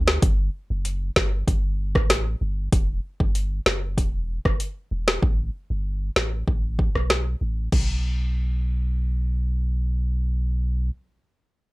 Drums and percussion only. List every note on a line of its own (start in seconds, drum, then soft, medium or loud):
0.08 snare loud
0.22 kick loud
0.22 closed hi-hat loud
0.85 closed hi-hat medium
1.16 kick medium
1.16 snare loud
1.48 kick medium
1.48 closed hi-hat medium
1.95 kick loud
1.95 cross-stick loud
2.10 snare loud
2.10 closed hi-hat medium
2.72 kick loud
2.72 closed hi-hat medium
3.20 kick medium
3.35 closed hi-hat medium
3.66 snare loud
3.98 kick medium
3.98 closed hi-hat medium
4.45 kick medium
4.45 cross-stick medium
4.60 closed hi-hat medium
5.08 snare loud
5.22 kick loud
6.16 snare loud
6.48 kick medium
6.79 kick medium
6.95 cross-stick medium
7.10 snare loud
7.72 kick loud
7.72 crash medium